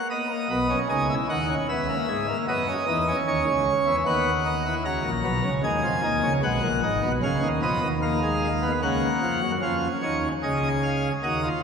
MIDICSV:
0, 0, Header, 1, 2, 480
1, 0, Start_track
1, 0, Tempo, 795756
1, 55, Time_signature, 3, 2, 24, 8
1, 7016, End_track
2, 0, Start_track
2, 0, Title_t, "Pipe organ"
2, 0, Program_c, 0, 19
2, 61, Note_on_c, 0, 59, 68
2, 62, Note_on_c, 0, 75, 72
2, 163, Note_off_c, 0, 59, 0
2, 182, Note_on_c, 0, 58, 59
2, 283, Note_off_c, 0, 58, 0
2, 301, Note_on_c, 0, 35, 77
2, 302, Note_on_c, 0, 47, 73
2, 303, Note_on_c, 0, 59, 61
2, 404, Note_off_c, 0, 59, 0
2, 421, Note_on_c, 0, 61, 62
2, 449, Note_off_c, 0, 35, 0
2, 450, Note_off_c, 0, 47, 0
2, 474, Note_off_c, 0, 75, 0
2, 523, Note_off_c, 0, 61, 0
2, 539, Note_on_c, 0, 80, 64
2, 540, Note_on_c, 0, 37, 78
2, 540, Note_on_c, 0, 49, 70
2, 540, Note_on_c, 0, 63, 64
2, 643, Note_off_c, 0, 63, 0
2, 659, Note_on_c, 0, 64, 63
2, 687, Note_off_c, 0, 80, 0
2, 688, Note_off_c, 0, 37, 0
2, 688, Note_off_c, 0, 49, 0
2, 762, Note_off_c, 0, 64, 0
2, 781, Note_on_c, 0, 39, 73
2, 781, Note_on_c, 0, 51, 74
2, 781, Note_on_c, 0, 63, 66
2, 781, Note_on_c, 0, 78, 66
2, 883, Note_off_c, 0, 63, 0
2, 900, Note_on_c, 0, 61, 64
2, 929, Note_off_c, 0, 39, 0
2, 929, Note_off_c, 0, 51, 0
2, 929, Note_off_c, 0, 78, 0
2, 1002, Note_off_c, 0, 61, 0
2, 1019, Note_on_c, 0, 37, 81
2, 1019, Note_on_c, 0, 49, 80
2, 1019, Note_on_c, 0, 59, 63
2, 1020, Note_on_c, 0, 76, 68
2, 1122, Note_off_c, 0, 59, 0
2, 1139, Note_on_c, 0, 58, 61
2, 1167, Note_off_c, 0, 37, 0
2, 1167, Note_off_c, 0, 49, 0
2, 1241, Note_off_c, 0, 58, 0
2, 1257, Note_on_c, 0, 56, 80
2, 1258, Note_on_c, 0, 44, 76
2, 1360, Note_off_c, 0, 56, 0
2, 1377, Note_on_c, 0, 58, 59
2, 1406, Note_off_c, 0, 44, 0
2, 1430, Note_off_c, 0, 76, 0
2, 1480, Note_off_c, 0, 58, 0
2, 1497, Note_on_c, 0, 42, 86
2, 1498, Note_on_c, 0, 54, 89
2, 1498, Note_on_c, 0, 75, 70
2, 1499, Note_on_c, 0, 59, 71
2, 1600, Note_off_c, 0, 59, 0
2, 1615, Note_on_c, 0, 61, 59
2, 1645, Note_off_c, 0, 42, 0
2, 1645, Note_off_c, 0, 54, 0
2, 1718, Note_off_c, 0, 61, 0
2, 1736, Note_on_c, 0, 52, 77
2, 1737, Note_on_c, 0, 40, 75
2, 1737, Note_on_c, 0, 63, 61
2, 1839, Note_off_c, 0, 63, 0
2, 1857, Note_on_c, 0, 61, 66
2, 1884, Note_off_c, 0, 52, 0
2, 1885, Note_off_c, 0, 40, 0
2, 1908, Note_off_c, 0, 75, 0
2, 1973, Note_on_c, 0, 39, 79
2, 1974, Note_on_c, 0, 51, 78
2, 1975, Note_on_c, 0, 73, 63
2, 2076, Note_off_c, 0, 39, 0
2, 2076, Note_off_c, 0, 51, 0
2, 2094, Note_on_c, 0, 37, 78
2, 2095, Note_on_c, 0, 49, 76
2, 2241, Note_off_c, 0, 37, 0
2, 2242, Note_off_c, 0, 49, 0
2, 2331, Note_on_c, 0, 52, 79
2, 2332, Note_on_c, 0, 40, 75
2, 2367, Note_off_c, 0, 61, 0
2, 2383, Note_off_c, 0, 73, 0
2, 2433, Note_off_c, 0, 40, 0
2, 2433, Note_off_c, 0, 52, 0
2, 2448, Note_on_c, 0, 39, 82
2, 2448, Note_on_c, 0, 59, 73
2, 2449, Note_on_c, 0, 51, 84
2, 2450, Note_on_c, 0, 78, 73
2, 2595, Note_off_c, 0, 59, 0
2, 2689, Note_on_c, 0, 63, 67
2, 2790, Note_off_c, 0, 63, 0
2, 2809, Note_on_c, 0, 64, 64
2, 2857, Note_off_c, 0, 39, 0
2, 2858, Note_off_c, 0, 51, 0
2, 2858, Note_off_c, 0, 78, 0
2, 2910, Note_off_c, 0, 64, 0
2, 2925, Note_on_c, 0, 37, 73
2, 2925, Note_on_c, 0, 66, 64
2, 2925, Note_on_c, 0, 82, 74
2, 2926, Note_on_c, 0, 49, 70
2, 3027, Note_off_c, 0, 37, 0
2, 3028, Note_off_c, 0, 49, 0
2, 3043, Note_on_c, 0, 34, 61
2, 3044, Note_on_c, 0, 46, 60
2, 3073, Note_off_c, 0, 66, 0
2, 3146, Note_off_c, 0, 34, 0
2, 3146, Note_off_c, 0, 46, 0
2, 3161, Note_on_c, 0, 35, 73
2, 3162, Note_on_c, 0, 47, 70
2, 3162, Note_on_c, 0, 54, 80
2, 3265, Note_off_c, 0, 35, 0
2, 3265, Note_off_c, 0, 47, 0
2, 3283, Note_on_c, 0, 49, 67
2, 3284, Note_on_c, 0, 37, 67
2, 3311, Note_off_c, 0, 54, 0
2, 3336, Note_off_c, 0, 82, 0
2, 3386, Note_off_c, 0, 37, 0
2, 3386, Note_off_c, 0, 49, 0
2, 3400, Note_on_c, 0, 80, 74
2, 3401, Note_on_c, 0, 51, 71
2, 3402, Note_on_c, 0, 39, 75
2, 3402, Note_on_c, 0, 56, 79
2, 3504, Note_off_c, 0, 51, 0
2, 3505, Note_off_c, 0, 39, 0
2, 3520, Note_on_c, 0, 53, 74
2, 3521, Note_on_c, 0, 41, 74
2, 3550, Note_off_c, 0, 56, 0
2, 3624, Note_off_c, 0, 41, 0
2, 3624, Note_off_c, 0, 53, 0
2, 3641, Note_on_c, 0, 39, 75
2, 3641, Note_on_c, 0, 51, 71
2, 3641, Note_on_c, 0, 58, 82
2, 3744, Note_off_c, 0, 39, 0
2, 3744, Note_off_c, 0, 51, 0
2, 3760, Note_on_c, 0, 37, 71
2, 3760, Note_on_c, 0, 49, 74
2, 3789, Note_off_c, 0, 58, 0
2, 3813, Note_off_c, 0, 80, 0
2, 3863, Note_off_c, 0, 37, 0
2, 3863, Note_off_c, 0, 49, 0
2, 3878, Note_on_c, 0, 47, 79
2, 3878, Note_on_c, 0, 56, 89
2, 3879, Note_on_c, 0, 35, 76
2, 3879, Note_on_c, 0, 78, 74
2, 3982, Note_off_c, 0, 35, 0
2, 3982, Note_off_c, 0, 47, 0
2, 3999, Note_on_c, 0, 46, 71
2, 4000, Note_on_c, 0, 34, 72
2, 4027, Note_off_c, 0, 56, 0
2, 4102, Note_off_c, 0, 34, 0
2, 4102, Note_off_c, 0, 46, 0
2, 4120, Note_on_c, 0, 32, 73
2, 4120, Note_on_c, 0, 44, 75
2, 4121, Note_on_c, 0, 63, 85
2, 4222, Note_off_c, 0, 32, 0
2, 4223, Note_off_c, 0, 44, 0
2, 4239, Note_on_c, 0, 47, 68
2, 4240, Note_on_c, 0, 35, 70
2, 4268, Note_off_c, 0, 63, 0
2, 4290, Note_off_c, 0, 78, 0
2, 4341, Note_off_c, 0, 47, 0
2, 4342, Note_off_c, 0, 35, 0
2, 4361, Note_on_c, 0, 61, 100
2, 4361, Note_on_c, 0, 77, 81
2, 4362, Note_on_c, 0, 37, 81
2, 4363, Note_on_c, 0, 49, 78
2, 4463, Note_off_c, 0, 37, 0
2, 4463, Note_off_c, 0, 49, 0
2, 4479, Note_on_c, 0, 39, 74
2, 4480, Note_on_c, 0, 51, 67
2, 4509, Note_off_c, 0, 61, 0
2, 4509, Note_off_c, 0, 77, 0
2, 4581, Note_off_c, 0, 39, 0
2, 4582, Note_off_c, 0, 51, 0
2, 4599, Note_on_c, 0, 41, 74
2, 4599, Note_on_c, 0, 59, 86
2, 4600, Note_on_c, 0, 53, 77
2, 4601, Note_on_c, 0, 75, 76
2, 4702, Note_off_c, 0, 41, 0
2, 4702, Note_off_c, 0, 53, 0
2, 4717, Note_on_c, 0, 39, 72
2, 4717, Note_on_c, 0, 51, 72
2, 4747, Note_off_c, 0, 59, 0
2, 4749, Note_off_c, 0, 75, 0
2, 4838, Note_on_c, 0, 77, 71
2, 4839, Note_on_c, 0, 58, 83
2, 4942, Note_off_c, 0, 58, 0
2, 4962, Note_on_c, 0, 56, 84
2, 5110, Note_off_c, 0, 56, 0
2, 5203, Note_on_c, 0, 59, 89
2, 5236, Note_off_c, 0, 39, 0
2, 5236, Note_off_c, 0, 51, 0
2, 5254, Note_off_c, 0, 77, 0
2, 5306, Note_off_c, 0, 59, 0
2, 5322, Note_on_c, 0, 78, 72
2, 5323, Note_on_c, 0, 37, 71
2, 5323, Note_on_c, 0, 58, 89
2, 5324, Note_on_c, 0, 49, 79
2, 5472, Note_off_c, 0, 37, 0
2, 5473, Note_off_c, 0, 49, 0
2, 5562, Note_on_c, 0, 41, 71
2, 5562, Note_on_c, 0, 53, 71
2, 5666, Note_off_c, 0, 41, 0
2, 5666, Note_off_c, 0, 53, 0
2, 5684, Note_on_c, 0, 42, 69
2, 5684, Note_on_c, 0, 54, 69
2, 5738, Note_off_c, 0, 58, 0
2, 5738, Note_off_c, 0, 78, 0
2, 5788, Note_off_c, 0, 42, 0
2, 5788, Note_off_c, 0, 54, 0
2, 5803, Note_on_c, 0, 41, 63
2, 5805, Note_on_c, 0, 53, 63
2, 5805, Note_on_c, 0, 61, 61
2, 5805, Note_on_c, 0, 77, 74
2, 5954, Note_off_c, 0, 41, 0
2, 5955, Note_off_c, 0, 53, 0
2, 5955, Note_off_c, 0, 77, 0
2, 6049, Note_on_c, 0, 73, 66
2, 6050, Note_on_c, 0, 39, 56
2, 6050, Note_on_c, 0, 51, 57
2, 6199, Note_off_c, 0, 73, 0
2, 6200, Note_off_c, 0, 39, 0
2, 6200, Note_off_c, 0, 51, 0
2, 6222, Note_off_c, 0, 61, 0
2, 6291, Note_on_c, 0, 68, 59
2, 6292, Note_on_c, 0, 49, 58
2, 6293, Note_on_c, 0, 37, 55
2, 6293, Note_on_c, 0, 75, 68
2, 6442, Note_off_c, 0, 75, 0
2, 6532, Note_on_c, 0, 77, 71
2, 6681, Note_off_c, 0, 77, 0
2, 6705, Note_off_c, 0, 68, 0
2, 6706, Note_off_c, 0, 37, 0
2, 6706, Note_off_c, 0, 49, 0
2, 6775, Note_on_c, 0, 51, 64
2, 6776, Note_on_c, 0, 39, 64
2, 6776, Note_on_c, 0, 66, 68
2, 6776, Note_on_c, 0, 75, 70
2, 6878, Note_off_c, 0, 66, 0
2, 6894, Note_on_c, 0, 65, 64
2, 6923, Note_off_c, 0, 51, 0
2, 6924, Note_off_c, 0, 39, 0
2, 6924, Note_off_c, 0, 75, 0
2, 6997, Note_off_c, 0, 65, 0
2, 7016, End_track
0, 0, End_of_file